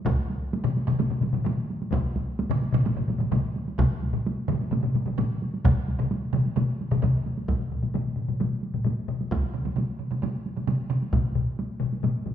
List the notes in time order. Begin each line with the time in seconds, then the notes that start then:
0.06 taiko, taiko low-mid, taiko mid, taiko high
0.30 taiko high
0.53 taiko high
0.64 taiko low-mid, taiko mid
0.77 taiko high
0.87 taiko low-mid, taiko mid, taiko high
0.99 taiko low-mid, taiko mid, taiko high
1.10 taiko low-mid, taiko mid
1.21 taiko low-mid, taiko mid, taiko high
1.33 taiko low-mid, taiko mid, taiko high
1.44 taiko low-mid, taiko mid, taiko high
1.70 taiko high
1.82 taiko high
1.91 taiko, taiko low-mid, taiko mid, taiko high
2.16 taiko, taiko high
2.39 taiko high
2.50 taiko low-mid, taiko mid
2.62 taiko high
2.73 taiko low-mid, taiko mid, taiko high
2.84 taiko low-mid, taiko mid, taiko high
2.96 taiko low-mid, taiko mid
3.08 taiko low-mid, taiko mid, taiko high
3.20 taiko low-mid, taiko mid, taiko high
3.32 taiko, taiko low-mid, taiko mid, taiko high
3.56 taiko high
3.68 taiko high
3.78 taiko, taiko low-mid, taiko mid, taiko high
4.03 taiko high
4.13 taiko low-mid, taiko mid
4.26 taiko high
4.48 taiko low-mid, taiko mid, taiko high
4.61 taiko high
4.71 taiko low-mid, taiko mid, taiko high
4.83 taiko low-mid, taiko mid
4.94 taiko low-mid, taiko mid, taiko high
5.06 taiko low-mid, taiko mid, taiko high
5.18 taiko low-mid, taiko mid, taiko high
5.42 taiko high
5.54 taiko high
5.64 taiko, taiko low-mid, taiko mid, taiko high
5.88 taiko high
5.99 taiko low-mid, taiko mid
6.11 taiko high
6.33 taiko low-mid, taiko mid, taiko high
6.46 taiko high
6.56 taiko low-mid, taiko mid, taiko high
6.81 taiko high
6.91 taiko low-mid, taiko mid, taiko high
7.02 taiko, taiko low-mid, taiko mid, taiko high
7.26 taiko high
7.38 taiko high
7.48 taiko, taiko low-mid, taiko high
7.60 taiko low-mid
7.71 taiko low-mid
7.83 taiko low-mid, taiko high
7.94 taiko low-mid, taiko high
8.17 taiko low-mid
8.28 taiko low-mid, taiko high
8.40 taiko low-mid, taiko high
8.63 taiko high
8.74 taiko low-mid, taiko high
8.84 taiko low-mid, taiko high
9.08 taiko low-mid
9.21 taiko high
9.31 taiko, taiko mid, taiko high
9.42 taiko mid
9.54 taiko mid
9.65 taiko mid, taiko high
9.77 taiko mid, taiko high
9.99 taiko mid
10.11 taiko mid, taiko high
10.22 taiko mid, taiko high
10.46 taiko high
10.57 taiko mid, taiko high
10.67 taiko mid, taiko high
10.90 taiko mid
11.02 taiko high
11.13 taiko, taiko low-mid, taiko high
11.35 taiko low-mid
11.59 taiko high
11.80 taiko low-mid
11.93 taiko high
12.03 taiko low-mid, taiko high
12.26 taiko low-mid, taiko high